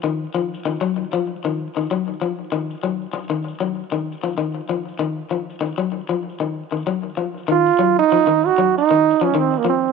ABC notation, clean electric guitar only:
X:1
M:4/4
L:1/16
Q:1/4=97
K:Ebdor
V:1 name="Clean electric guitar" clef=bass
E,2 F,2 E, G,2 F,2 E,2 E, G,2 F,2 | E,2 G,2 z E,2 G,2 E,2 F, E,2 F,2 | E,2 F,2 E, G,2 F,2 E,2 E, G,2 F,2 | E,2 G,2 F, E,2 G,2 E,2 F, E,2 F,2 |]